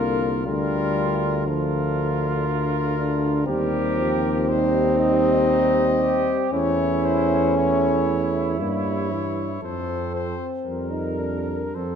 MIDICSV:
0, 0, Header, 1, 6, 480
1, 0, Start_track
1, 0, Key_signature, -2, "major"
1, 0, Tempo, 1003344
1, 220, Time_signature, 3, 2, 24, 8
1, 2623, Tempo, 1032702
1, 5023, Tempo, 1111111
1, 5588, End_track
2, 0, Start_track
2, 0, Title_t, "Cornet"
2, 0, Program_c, 0, 56
2, 0, Note_on_c, 0, 70, 71
2, 202, Note_off_c, 0, 70, 0
2, 223, Note_on_c, 0, 70, 70
2, 692, Note_off_c, 0, 70, 0
2, 701, Note_on_c, 0, 70, 73
2, 1640, Note_off_c, 0, 70, 0
2, 1660, Note_on_c, 0, 70, 66
2, 2149, Note_on_c, 0, 72, 66
2, 2156, Note_off_c, 0, 70, 0
2, 2384, Note_off_c, 0, 72, 0
2, 2387, Note_on_c, 0, 75, 71
2, 3029, Note_off_c, 0, 75, 0
2, 3109, Note_on_c, 0, 73, 64
2, 3351, Note_on_c, 0, 72, 69
2, 3358, Note_off_c, 0, 73, 0
2, 3592, Note_on_c, 0, 73, 60
2, 3599, Note_off_c, 0, 72, 0
2, 4068, Note_off_c, 0, 73, 0
2, 4071, Note_on_c, 0, 73, 65
2, 4537, Note_off_c, 0, 73, 0
2, 4554, Note_on_c, 0, 72, 59
2, 4784, Note_off_c, 0, 72, 0
2, 4791, Note_on_c, 0, 72, 58
2, 4941, Note_off_c, 0, 72, 0
2, 5026, Note_on_c, 0, 70, 49
2, 5501, Note_on_c, 0, 72, 45
2, 5507, Note_off_c, 0, 70, 0
2, 5588, Note_off_c, 0, 72, 0
2, 5588, End_track
3, 0, Start_track
3, 0, Title_t, "Flugelhorn"
3, 0, Program_c, 1, 56
3, 0, Note_on_c, 1, 65, 75
3, 203, Note_off_c, 1, 65, 0
3, 220, Note_on_c, 1, 65, 76
3, 690, Note_off_c, 1, 65, 0
3, 702, Note_on_c, 1, 65, 76
3, 1640, Note_off_c, 1, 65, 0
3, 1660, Note_on_c, 1, 67, 72
3, 2127, Note_off_c, 1, 67, 0
3, 2149, Note_on_c, 1, 63, 69
3, 2617, Note_off_c, 1, 63, 0
3, 2626, Note_on_c, 1, 63, 79
3, 2795, Note_off_c, 1, 63, 0
3, 2864, Note_on_c, 1, 67, 79
3, 3100, Note_off_c, 1, 67, 0
3, 3111, Note_on_c, 1, 64, 67
3, 3581, Note_off_c, 1, 64, 0
3, 3591, Note_on_c, 1, 64, 66
3, 4529, Note_off_c, 1, 64, 0
3, 4549, Note_on_c, 1, 69, 55
3, 4893, Note_off_c, 1, 69, 0
3, 5023, Note_on_c, 1, 70, 49
3, 5501, Note_on_c, 1, 69, 48
3, 5508, Note_off_c, 1, 70, 0
3, 5588, Note_off_c, 1, 69, 0
3, 5588, End_track
4, 0, Start_track
4, 0, Title_t, "Euphonium"
4, 0, Program_c, 2, 58
4, 0, Note_on_c, 2, 58, 91
4, 218, Note_off_c, 2, 58, 0
4, 221, Note_on_c, 2, 55, 106
4, 703, Note_on_c, 2, 53, 80
4, 710, Note_off_c, 2, 55, 0
4, 1181, Note_off_c, 2, 53, 0
4, 1417, Note_on_c, 2, 62, 81
4, 1641, Note_off_c, 2, 62, 0
4, 1658, Note_on_c, 2, 60, 121
4, 3106, Note_on_c, 2, 61, 122
4, 3113, Note_off_c, 2, 60, 0
4, 4068, Note_off_c, 2, 61, 0
4, 4070, Note_on_c, 2, 58, 73
4, 4303, Note_off_c, 2, 58, 0
4, 4547, Note_on_c, 2, 60, 93
4, 5138, Note_on_c, 2, 63, 69
4, 5144, Note_off_c, 2, 60, 0
4, 5258, Note_on_c, 2, 62, 69
4, 5265, Note_off_c, 2, 63, 0
4, 5504, Note_on_c, 2, 60, 62
4, 5510, Note_off_c, 2, 62, 0
4, 5588, Note_off_c, 2, 60, 0
4, 5588, End_track
5, 0, Start_track
5, 0, Title_t, "Trombone"
5, 0, Program_c, 3, 57
5, 0, Note_on_c, 3, 50, 69
5, 201, Note_off_c, 3, 50, 0
5, 223, Note_on_c, 3, 50, 65
5, 692, Note_off_c, 3, 50, 0
5, 702, Note_on_c, 3, 50, 73
5, 1640, Note_off_c, 3, 50, 0
5, 1660, Note_on_c, 3, 55, 74
5, 1909, Note_on_c, 3, 53, 75
5, 1916, Note_off_c, 3, 55, 0
5, 2151, Note_on_c, 3, 55, 65
5, 2158, Note_off_c, 3, 53, 0
5, 3099, Note_off_c, 3, 55, 0
5, 3102, Note_on_c, 3, 57, 65
5, 4072, Note_on_c, 3, 55, 67
5, 4079, Note_off_c, 3, 57, 0
5, 4310, Note_on_c, 3, 52, 65
5, 4317, Note_off_c, 3, 55, 0
5, 4477, Note_off_c, 3, 52, 0
5, 4547, Note_on_c, 3, 53, 55
5, 4892, Note_off_c, 3, 53, 0
5, 5025, Note_on_c, 3, 55, 52
5, 5502, Note_on_c, 3, 53, 46
5, 5509, Note_off_c, 3, 55, 0
5, 5588, Note_off_c, 3, 53, 0
5, 5588, End_track
6, 0, Start_track
6, 0, Title_t, "Tuba"
6, 0, Program_c, 4, 58
6, 0, Note_on_c, 4, 36, 62
6, 225, Note_on_c, 4, 38, 70
6, 232, Note_off_c, 4, 36, 0
6, 1661, Note_off_c, 4, 38, 0
6, 1663, Note_on_c, 4, 39, 76
6, 3028, Note_off_c, 4, 39, 0
6, 3107, Note_on_c, 4, 40, 73
6, 4071, Note_on_c, 4, 43, 59
6, 4078, Note_off_c, 4, 40, 0
6, 4547, Note_off_c, 4, 43, 0
6, 4549, Note_on_c, 4, 41, 59
6, 4893, Note_off_c, 4, 41, 0
6, 5031, Note_on_c, 4, 41, 51
6, 5487, Note_off_c, 4, 41, 0
6, 5506, Note_on_c, 4, 41, 50
6, 5588, Note_off_c, 4, 41, 0
6, 5588, End_track
0, 0, End_of_file